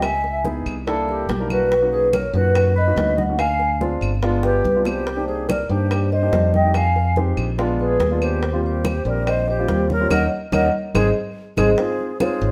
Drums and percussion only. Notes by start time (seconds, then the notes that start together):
0.02 high bongo, high conga, claves
0.24 high bongo, high conga
0.45 high bongo, high conga
0.66 claves
0.87 high bongo, high conga
1.08 high bongo, high conga
1.29 high bongo, low bongo, high conga
1.50 high bongo, high conga, claves
1.71 high bongo, high conga
1.92 high conga
2.13 high bongo, high conga, claves
2.34 high bongo, high conga
2.55 high bongo, high conga, claves
2.76 high bongo, high conga
2.97 high bongo, low bongo, high conga
3.18 high bongo, high conga
3.39 high bongo, high conga, claves
3.59 high bongo, high conga
3.81 high bongo, high conga
4.02 claves
4.23 high bongo, high conga
4.43 high bongo, high conga
4.65 high conga
4.85 low bongo, claves
5.07 high bongo, high conga
5.29 high conga
5.49 high bongo, high conga, claves
5.70 high bongo, high conga
5.91 high bongo, high conga, claves
6.12 high bongo, high conga
6.33 high bongo, low bongo, high conga
6.54 high bongo, high conga
6.74 high bongo, high conga, claves
6.96 high bongo, high conga
7.16 high bongo, high conga
7.37 claves
7.58 high bongo, high conga
7.79 high bongo, high conga
8.00 high bongo, low bongo, high conga
8.22 high bongo, claves
8.42 high bongo, high conga
8.63 high conga
8.85 high bongo, high conga, claves
9.06 high bongo, high conga
9.27 high bongo, high conga, claves
9.48 high bongo, high conga
9.68 high bongo, low bongo, high conga
9.90 high bongo, high conga
10.10 high bongo, high conga, claves
10.52 high bongo, high conga, claves
10.95 high bongo, high conga, claves
11.57 high bongo, high conga, claves
11.78 high bongo, high conga
11.99 high conga
12.20 high bongo, high conga, claves
12.41 high bongo, high conga